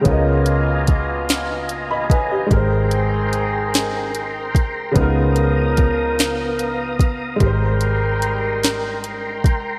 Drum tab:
HH |xxxxxx|xxxxxx|xxxxxx|xxxxxx|
SD |---o--|---o--|---o--|---o--|
BD |o-o--o|o----o|o-o--o|o----o|